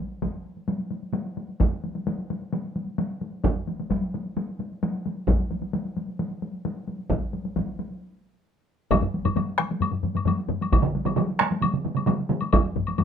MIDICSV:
0, 0, Header, 1, 3, 480
1, 0, Start_track
1, 0, Tempo, 459067
1, 1676, Time_signature, 4, 2, 24, 8
1, 6947, Tempo, 452148
1, 13737, End_track
2, 0, Start_track
2, 0, Title_t, "Taiko and cinematic ensemble drums"
2, 231, Note_on_c, 9, 41, 54
2, 232, Note_on_c, 9, 48, 57
2, 335, Note_off_c, 9, 41, 0
2, 337, Note_off_c, 9, 48, 0
2, 358, Note_on_c, 9, 48, 18
2, 462, Note_off_c, 9, 48, 0
2, 593, Note_on_c, 9, 48, 19
2, 698, Note_off_c, 9, 48, 0
2, 708, Note_on_c, 9, 48, 53
2, 813, Note_off_c, 9, 48, 0
2, 829, Note_on_c, 9, 48, 18
2, 934, Note_off_c, 9, 48, 0
2, 947, Note_on_c, 9, 48, 47
2, 1052, Note_off_c, 9, 48, 0
2, 1075, Note_on_c, 9, 48, 17
2, 1179, Note_off_c, 9, 48, 0
2, 1186, Note_on_c, 9, 48, 62
2, 1291, Note_off_c, 9, 48, 0
2, 1311, Note_on_c, 9, 48, 18
2, 1416, Note_off_c, 9, 48, 0
2, 1433, Note_on_c, 9, 48, 44
2, 1538, Note_off_c, 9, 48, 0
2, 1555, Note_on_c, 9, 48, 19
2, 1660, Note_off_c, 9, 48, 0
2, 1672, Note_on_c, 9, 48, 60
2, 1675, Note_on_c, 9, 41, 81
2, 1777, Note_off_c, 9, 48, 0
2, 1779, Note_off_c, 9, 41, 0
2, 1803, Note_on_c, 9, 48, 19
2, 1907, Note_off_c, 9, 48, 0
2, 1921, Note_on_c, 9, 48, 42
2, 2025, Note_off_c, 9, 48, 0
2, 2040, Note_on_c, 9, 48, 42
2, 2144, Note_off_c, 9, 48, 0
2, 2163, Note_on_c, 9, 48, 61
2, 2268, Note_off_c, 9, 48, 0
2, 2285, Note_on_c, 9, 48, 20
2, 2389, Note_off_c, 9, 48, 0
2, 2407, Note_on_c, 9, 48, 54
2, 2512, Note_off_c, 9, 48, 0
2, 2529, Note_on_c, 9, 48, 19
2, 2634, Note_off_c, 9, 48, 0
2, 2641, Note_on_c, 9, 48, 55
2, 2746, Note_off_c, 9, 48, 0
2, 2761, Note_on_c, 9, 48, 20
2, 2866, Note_off_c, 9, 48, 0
2, 2883, Note_on_c, 9, 48, 46
2, 2988, Note_off_c, 9, 48, 0
2, 3000, Note_on_c, 9, 48, 19
2, 3105, Note_off_c, 9, 48, 0
2, 3119, Note_on_c, 9, 48, 63
2, 3223, Note_off_c, 9, 48, 0
2, 3237, Note_on_c, 9, 48, 19
2, 3342, Note_off_c, 9, 48, 0
2, 3361, Note_on_c, 9, 48, 45
2, 3466, Note_off_c, 9, 48, 0
2, 3475, Note_on_c, 9, 48, 20
2, 3580, Note_off_c, 9, 48, 0
2, 3594, Note_on_c, 9, 48, 56
2, 3599, Note_on_c, 9, 41, 90
2, 3698, Note_off_c, 9, 48, 0
2, 3704, Note_off_c, 9, 41, 0
2, 3727, Note_on_c, 9, 48, 18
2, 3831, Note_off_c, 9, 48, 0
2, 3842, Note_on_c, 9, 48, 44
2, 3947, Note_off_c, 9, 48, 0
2, 3969, Note_on_c, 9, 48, 42
2, 4074, Note_off_c, 9, 48, 0
2, 4076, Note_on_c, 9, 41, 59
2, 4084, Note_on_c, 9, 48, 63
2, 4181, Note_off_c, 9, 41, 0
2, 4189, Note_off_c, 9, 48, 0
2, 4211, Note_on_c, 9, 48, 18
2, 4316, Note_off_c, 9, 48, 0
2, 4331, Note_on_c, 9, 48, 50
2, 4436, Note_off_c, 9, 48, 0
2, 4448, Note_on_c, 9, 48, 19
2, 4552, Note_off_c, 9, 48, 0
2, 4569, Note_on_c, 9, 48, 56
2, 4673, Note_off_c, 9, 48, 0
2, 4693, Note_on_c, 9, 48, 19
2, 4798, Note_off_c, 9, 48, 0
2, 4810, Note_on_c, 9, 48, 48
2, 4915, Note_off_c, 9, 48, 0
2, 4931, Note_on_c, 9, 48, 18
2, 5036, Note_off_c, 9, 48, 0
2, 5048, Note_on_c, 9, 48, 61
2, 5153, Note_off_c, 9, 48, 0
2, 5170, Note_on_c, 9, 48, 19
2, 5274, Note_off_c, 9, 48, 0
2, 5287, Note_on_c, 9, 48, 47
2, 5392, Note_off_c, 9, 48, 0
2, 5519, Note_on_c, 9, 41, 89
2, 5524, Note_on_c, 9, 48, 56
2, 5623, Note_off_c, 9, 41, 0
2, 5629, Note_off_c, 9, 48, 0
2, 5646, Note_on_c, 9, 48, 19
2, 5750, Note_off_c, 9, 48, 0
2, 5758, Note_on_c, 9, 48, 44
2, 5863, Note_off_c, 9, 48, 0
2, 5877, Note_on_c, 9, 48, 41
2, 5982, Note_off_c, 9, 48, 0
2, 5995, Note_on_c, 9, 48, 57
2, 6100, Note_off_c, 9, 48, 0
2, 6117, Note_on_c, 9, 48, 17
2, 6221, Note_off_c, 9, 48, 0
2, 6238, Note_on_c, 9, 48, 47
2, 6343, Note_off_c, 9, 48, 0
2, 6360, Note_on_c, 9, 48, 20
2, 6465, Note_off_c, 9, 48, 0
2, 6476, Note_on_c, 9, 48, 49
2, 6580, Note_off_c, 9, 48, 0
2, 6593, Note_on_c, 9, 48, 19
2, 6697, Note_off_c, 9, 48, 0
2, 6716, Note_on_c, 9, 48, 42
2, 6820, Note_off_c, 9, 48, 0
2, 6833, Note_on_c, 9, 48, 18
2, 6937, Note_off_c, 9, 48, 0
2, 6954, Note_on_c, 9, 48, 54
2, 7060, Note_off_c, 9, 48, 0
2, 7072, Note_on_c, 9, 48, 18
2, 7178, Note_off_c, 9, 48, 0
2, 7192, Note_on_c, 9, 48, 42
2, 7299, Note_off_c, 9, 48, 0
2, 7311, Note_on_c, 9, 48, 18
2, 7417, Note_off_c, 9, 48, 0
2, 7433, Note_on_c, 9, 41, 88
2, 7434, Note_on_c, 9, 48, 53
2, 7539, Note_off_c, 9, 41, 0
2, 7541, Note_off_c, 9, 48, 0
2, 7560, Note_on_c, 9, 48, 18
2, 7667, Note_off_c, 9, 48, 0
2, 7678, Note_on_c, 9, 48, 41
2, 7784, Note_off_c, 9, 48, 0
2, 7804, Note_on_c, 9, 48, 37
2, 7910, Note_off_c, 9, 48, 0
2, 7919, Note_on_c, 9, 41, 56
2, 7921, Note_on_c, 9, 48, 59
2, 8025, Note_off_c, 9, 41, 0
2, 8027, Note_off_c, 9, 48, 0
2, 8038, Note_on_c, 9, 48, 18
2, 8144, Note_off_c, 9, 48, 0
2, 8165, Note_on_c, 9, 48, 45
2, 8271, Note_off_c, 9, 48, 0
2, 8280, Note_on_c, 9, 48, 18
2, 8387, Note_off_c, 9, 48, 0
2, 9351, Note_on_c, 9, 41, 107
2, 9358, Note_on_c, 9, 48, 61
2, 9457, Note_off_c, 9, 41, 0
2, 9464, Note_off_c, 9, 48, 0
2, 9473, Note_on_c, 9, 45, 84
2, 9579, Note_off_c, 9, 45, 0
2, 9599, Note_on_c, 9, 48, 47
2, 9705, Note_off_c, 9, 48, 0
2, 9713, Note_on_c, 9, 48, 45
2, 9714, Note_on_c, 9, 45, 95
2, 9819, Note_off_c, 9, 48, 0
2, 9820, Note_off_c, 9, 45, 0
2, 9828, Note_on_c, 9, 45, 84
2, 9837, Note_on_c, 9, 48, 63
2, 9934, Note_off_c, 9, 45, 0
2, 9943, Note_off_c, 9, 48, 0
2, 10066, Note_on_c, 9, 37, 62
2, 10079, Note_on_c, 9, 48, 49
2, 10172, Note_off_c, 9, 37, 0
2, 10185, Note_off_c, 9, 48, 0
2, 10201, Note_on_c, 9, 48, 50
2, 10301, Note_on_c, 9, 45, 64
2, 10307, Note_off_c, 9, 48, 0
2, 10317, Note_on_c, 9, 48, 55
2, 10407, Note_off_c, 9, 45, 0
2, 10419, Note_on_c, 9, 45, 60
2, 10423, Note_off_c, 9, 48, 0
2, 10525, Note_off_c, 9, 45, 0
2, 10541, Note_on_c, 9, 45, 68
2, 10561, Note_on_c, 9, 48, 43
2, 10648, Note_off_c, 9, 45, 0
2, 10666, Note_on_c, 9, 45, 61
2, 10667, Note_off_c, 9, 48, 0
2, 10676, Note_on_c, 9, 48, 50
2, 10773, Note_off_c, 9, 45, 0
2, 10779, Note_on_c, 9, 45, 88
2, 10782, Note_off_c, 9, 48, 0
2, 10799, Note_on_c, 9, 48, 63
2, 10885, Note_off_c, 9, 45, 0
2, 10905, Note_off_c, 9, 48, 0
2, 11025, Note_on_c, 9, 45, 86
2, 11041, Note_on_c, 9, 48, 49
2, 11131, Note_off_c, 9, 45, 0
2, 11147, Note_off_c, 9, 48, 0
2, 11161, Note_on_c, 9, 48, 52
2, 11268, Note_off_c, 9, 48, 0
2, 11278, Note_on_c, 9, 41, 92
2, 11280, Note_on_c, 9, 48, 63
2, 11383, Note_on_c, 9, 47, 88
2, 11384, Note_off_c, 9, 41, 0
2, 11386, Note_off_c, 9, 48, 0
2, 11489, Note_off_c, 9, 47, 0
2, 11518, Note_on_c, 9, 48, 50
2, 11624, Note_off_c, 9, 48, 0
2, 11627, Note_on_c, 9, 47, 91
2, 11645, Note_on_c, 9, 48, 50
2, 11733, Note_off_c, 9, 47, 0
2, 11743, Note_on_c, 9, 47, 94
2, 11751, Note_off_c, 9, 48, 0
2, 11762, Note_on_c, 9, 48, 64
2, 11849, Note_off_c, 9, 47, 0
2, 11868, Note_off_c, 9, 48, 0
2, 11986, Note_on_c, 9, 37, 70
2, 12004, Note_on_c, 9, 48, 56
2, 12092, Note_off_c, 9, 37, 0
2, 12110, Note_off_c, 9, 48, 0
2, 12123, Note_on_c, 9, 48, 52
2, 12224, Note_on_c, 9, 47, 61
2, 12230, Note_off_c, 9, 48, 0
2, 12245, Note_on_c, 9, 48, 58
2, 12330, Note_off_c, 9, 47, 0
2, 12351, Note_off_c, 9, 48, 0
2, 12353, Note_on_c, 9, 47, 63
2, 12459, Note_off_c, 9, 47, 0
2, 12469, Note_on_c, 9, 47, 59
2, 12485, Note_on_c, 9, 48, 47
2, 12575, Note_off_c, 9, 47, 0
2, 12584, Note_on_c, 9, 47, 62
2, 12591, Note_off_c, 9, 48, 0
2, 12607, Note_on_c, 9, 48, 46
2, 12690, Note_off_c, 9, 47, 0
2, 12699, Note_on_c, 9, 47, 96
2, 12713, Note_off_c, 9, 48, 0
2, 12721, Note_on_c, 9, 48, 63
2, 12805, Note_off_c, 9, 47, 0
2, 12827, Note_off_c, 9, 48, 0
2, 12943, Note_on_c, 9, 47, 89
2, 12960, Note_on_c, 9, 48, 49
2, 13049, Note_off_c, 9, 47, 0
2, 13066, Note_off_c, 9, 48, 0
2, 13078, Note_on_c, 9, 48, 49
2, 13184, Note_off_c, 9, 48, 0
2, 13194, Note_on_c, 9, 41, 100
2, 13201, Note_on_c, 9, 48, 57
2, 13301, Note_off_c, 9, 41, 0
2, 13307, Note_off_c, 9, 48, 0
2, 13437, Note_on_c, 9, 45, 80
2, 13442, Note_on_c, 9, 48, 44
2, 13543, Note_off_c, 9, 45, 0
2, 13548, Note_off_c, 9, 48, 0
2, 13569, Note_on_c, 9, 48, 46
2, 13674, Note_on_c, 9, 45, 81
2, 13675, Note_off_c, 9, 48, 0
2, 13685, Note_on_c, 9, 48, 59
2, 13737, Note_off_c, 9, 45, 0
2, 13737, Note_off_c, 9, 48, 0
2, 13737, End_track
3, 0, Start_track
3, 0, Title_t, "Drums"
3, 9355, Note_on_c, 9, 76, 51
3, 9461, Note_off_c, 9, 76, 0
3, 9715, Note_on_c, 9, 76, 41
3, 9821, Note_off_c, 9, 76, 0
3, 9838, Note_on_c, 9, 76, 37
3, 9944, Note_off_c, 9, 76, 0
3, 10073, Note_on_c, 9, 76, 35
3, 10179, Note_off_c, 9, 76, 0
3, 10318, Note_on_c, 9, 76, 44
3, 10424, Note_off_c, 9, 76, 0
3, 10686, Note_on_c, 9, 76, 34
3, 10792, Note_off_c, 9, 76, 0
3, 10803, Note_on_c, 9, 76, 37
3, 10909, Note_off_c, 9, 76, 0
3, 11171, Note_on_c, 9, 76, 37
3, 11277, Note_off_c, 9, 76, 0
3, 11282, Note_on_c, 9, 76, 46
3, 11388, Note_off_c, 9, 76, 0
3, 11638, Note_on_c, 9, 76, 38
3, 11744, Note_off_c, 9, 76, 0
3, 11754, Note_on_c, 9, 76, 35
3, 11860, Note_off_c, 9, 76, 0
3, 11998, Note_on_c, 9, 76, 33
3, 12104, Note_off_c, 9, 76, 0
3, 12233, Note_on_c, 9, 76, 50
3, 12339, Note_off_c, 9, 76, 0
3, 12597, Note_on_c, 9, 76, 35
3, 12703, Note_off_c, 9, 76, 0
3, 12709, Note_on_c, 9, 76, 34
3, 12815, Note_off_c, 9, 76, 0
3, 13064, Note_on_c, 9, 76, 40
3, 13170, Note_off_c, 9, 76, 0
3, 13191, Note_on_c, 9, 76, 50
3, 13297, Note_off_c, 9, 76, 0
3, 13555, Note_on_c, 9, 76, 41
3, 13662, Note_off_c, 9, 76, 0
3, 13675, Note_on_c, 9, 76, 39
3, 13737, Note_off_c, 9, 76, 0
3, 13737, End_track
0, 0, End_of_file